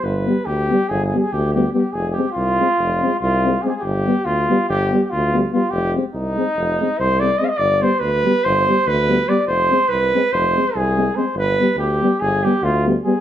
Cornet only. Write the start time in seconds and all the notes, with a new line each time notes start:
0.03 B4
0.46 G4
0.89 G#4
1.04 G#4
1.19 G#4
1.32 G4
1.54 G4
1.73 G4
1.92 G#4
2.09 G4 G#4
2.32 F4
3.20 F4
3.62 G#4
3.66 G4 G#4
3.75 G#4
3.80 G4
4.25 F4
4.69 G4
5.04 G4
5.10 F4
5.52 F4
5.70 G4
6.14 D#4
6.99 C5
7.20 D5
7.38 D#5
7.44 D#5 F5
7.57 D5
7.82 C5
7.99 B4
8.44 C5
8.87 B4
9.29 D5
9.47 C5
9.88 B4
10.32 C5
10.76 G#4
11.16 C5
11.37 B4
11.78 G4
12.20 G#4
12.43 G4
12.63 F4
13.04 G#4